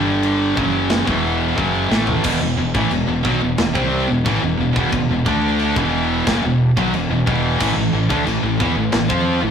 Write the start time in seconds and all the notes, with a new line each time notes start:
Already playing: G1 G2 D3 G3
0.23 crash
0.56 F#1 F#2 C#3 F#3, kick
0.90 snare, crash
1.07 E1 E2 B2 E3, kick
1.57 F#1 F#2 C#3 F#3, kick
1.90 A1 A2 E3 A3, snare
2.07 floor tom
2.24 E1 E2 B2, kick, crash, china
2.40 E1 E2 B2
2.57 E1 E2 B2
2.74 A1 A2 E3, kick
2.91 E1 E2 B2, china
3.08 E1 E2 B2
3.25 B1 B2 F#3, kick
3.42 E1 E2 B2
3.58 E1 E2 B2, snare, china
3.75 C2 C3 G3 C4, kick
4.10 E1 E2 B2
4.26 A1 A2 E3, kick, china
4.40 E1 E2 B2
4.44 E2 B2
4.60 E1 E2 B2
4.73 E1 E2 B2, kick
4.77 E2 B2
4.92 E1 E2 B2, kick, china
5.10 E1 E2 B2
5.26 D2 D3 A3 D4, kick
5.59 china
5.76 E1 E2 B2 E3, kick
6.27 F#1 F#2 C#3, kick, snare, china
6.44 E1 E2 B2
6.77 B1 B2 F#3, kick
6.93 E1 E2 B2, china
7.10 E1 E2 B2
7.26 E1 E2 B2 E3, kick
7.59 A1 A2 E3, kick, crash, china
7.76 A1 A2 E3
7.93 A1 A2 E3
8.09 D2 D3 A3, kick
8.26 A1 A2 E3, china
8.42 A1 A2 E3
8.60 E2 E3 B3, kick
8.76 A1 A2 E3
8.92 A1 A2 E3, snare, china
9.09 F2 F3 C4 F4, kick
9.42 A1 A2 E3